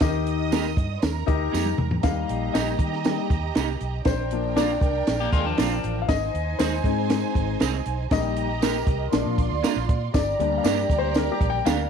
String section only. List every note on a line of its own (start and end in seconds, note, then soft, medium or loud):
0.00 1.00 D#5 medium
0.00 1.00 D#6 medium
1.02 2.02 A#4 medium
1.02 2.01 A#5 medium
2.02 4.02 G4 medium
2.02 4.02 D#5 medium
2.02 4.02 A#5 medium
4.05 6.05 D4 medium
4.05 6.05 A#4 medium
4.05 6.04 G5 medium
6.09 8.07 D#4 medium
6.09 8.08 C5 medium
6.09 8.08 G#5 loud
8.10 9.10 G4 medium
8.10 9.11 D#5 medium
8.10 9.11 A#5 medium
9.11 10.12 F4 medium
9.11 10.11 D5 medium
9.11 10.11 C6 medium
10.15 11.90 G4 medium
10.15 11.90 D5 medium
10.15 11.90 A#5 medium